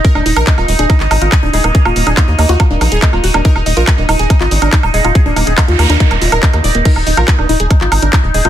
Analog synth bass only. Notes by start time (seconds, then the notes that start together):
0.15 D#1
0.26 D#1
0.36 A#1
0.58 D#1
0.68 D#1
0.79 D#1
1.00 G#1
1.11 G#1
1.22 G#1
1.43 D#1
1.53 D#1
1.64 D#1
1.85 D#1
1.96 D#1
2.07 D#1
2.28 D#2
2.39 D#2
2.49 D#2
2.70 D#1
2.81 A#1
2.92 D#1
3.13 D#1
3.24 D#1
3.34 D#1
3.56 D#1
3.66 D#1
3.77 A#1
3.98 D#1
4.09 D#1
4.19 D#1
4.41 G#1
4.51 G#1
4.62 G#1
4.83 D#1
4.94 D#1
5.05 D#1
5.26 D#1
5.36 D#1
5.47 D#1
5.68 D#2
5.79 D#2
5.90 D#2
6.11 D#1
6.22 D#1
6.32 D#1
6.53 D#2
6.64 D#1
6.75 D#1
6.96 D#1
7.07 D#1
7.17 A#1
7.39 D#1
7.49 D#1
7.60 D#1
7.81 G#1
7.92 G#1
8.02 G#1
8.24 D#1
8.34 D#1
8.45 D#1